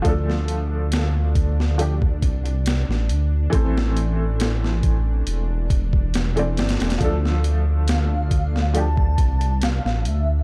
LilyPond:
<<
  \new Staff \with { instrumentName = "Soft synth lead" } { \time 4/4 \key d \minor \tempo 4 = 69 r1 | r1 | r4 f''4 a''4 f''8 e''8 | }
  \new Staff \with { instrumentName = "Synth drone" } { \time 4/4 \key d \minor d'1~ | d'1~ | d'1 | }
  \new Staff \with { instrumentName = "Felt piano" } { \time 4/4 \key d \minor <f a d' a'>2 <f a d' g'>16 r4. r16 | <e a c' a'>2~ <e a c' a'>8 r8. <e a c' d''>8. | <f a d' a'>2 <f a d' g'>16 r4. r16 | }
  \new Staff \with { instrumentName = "Detuned saw bass" } { \clef bass \time 4/4 \key d \minor d,2~ d,8 c,8. a,,16 d,8 | a,,2 e,,4 e,,8 g,,16 e,,16 | d,2~ d,8 c,8. a,,16 d,8 | }
  \new DrumStaff \with { instrumentName = "Drums" } \drummode { \time 4/4 <hh bd>16 sn16 hh8 <hh sn>8 <hh bd>16 sn16 hh16 bd16 <hh bd>16 hh16 <hh sn>16 sn16 hh8 | <hh bd>16 sn16 hh8 <hh sn>16 sn16 <hh bd>8 hh8 <hh bd>16 bd16 <hh sn>16 hh16 <hh sn>32 <hh sn>32 <hh sn>32 <hh sn>32 | <hh bd>16 sn16 hh8 <hh sn>8 <hh bd>16 sn16 hh16 bd16 <hh bd>16 hh16 <hh sn>16 sn16 hh8 | }
>>